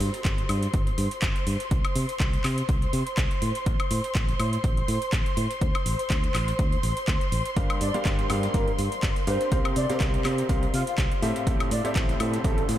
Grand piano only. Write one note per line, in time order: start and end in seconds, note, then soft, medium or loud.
7.57 7.78 G3 medium
7.57 7.78 D4 medium
7.57 7.78 G4 medium
7.57 7.78 A#4 medium
7.57 7.78 F5 medium
7.94 8.27 G3 medium
7.94 8.27 D4 medium
7.94 8.27 G4 medium
7.94 8.27 A#4 medium
7.94 8.27 F5 loud
8.30 8.51 G3 medium
8.30 8.51 D4 medium
8.30 8.51 G4 medium
8.30 8.51 A#4 medium
8.30 8.51 F5 medium
8.54 8.68 G3 medium
8.54 8.68 D4 medium
8.54 8.68 G4 medium
8.54 8.68 A#4 medium
8.54 8.68 F5 loud
9.27 9.48 D4 medium
9.27 9.48 G4 medium
9.27 9.48 A#4 medium
9.27 9.48 F5 medium
9.52 9.73 C3 medium
9.52 9.73 C4 medium
9.52 9.73 G4 medium
9.52 9.73 A#4 medium
9.52 9.73 F5 medium
9.89 10.22 C3 medium
9.89 10.22 C4 medium
9.89 10.22 G4 medium
9.89 10.22 A#4 medium
9.89 10.22 F5 loud
10.25 10.46 C3 medium
10.25 10.46 C4 medium
10.25 10.46 G4 medium
10.25 10.46 A#4 medium
10.25 10.46 F5 medium
10.49 10.63 C3 medium
10.49 10.63 C4 medium
10.49 10.63 G4 medium
10.49 10.63 A#4 medium
10.49 10.63 F5 loud
11.22 11.43 A2 medium
11.22 11.43 C4 medium
11.22 11.43 G4 medium
11.22 11.43 A4 medium
11.22 11.43 E5 medium
11.47 11.68 A2 medium
11.47 11.68 C4 medium
11.47 11.68 G4 medium
11.47 11.68 A4 medium
11.47 11.68 E5 medium
11.85 12.17 A2 medium
11.85 12.17 C4 medium
11.85 12.17 G4 medium
11.85 12.17 A4 medium
11.85 12.17 E5 loud
12.20 12.41 A2 medium
12.20 12.41 C4 medium
12.20 12.41 G4 medium
12.20 12.41 A4 medium
12.20 12.41 E5 medium
12.44 12.58 A2 medium
12.44 12.58 C4 medium
12.44 12.58 G4 medium
12.44 12.58 A4 medium
12.44 12.58 E5 loud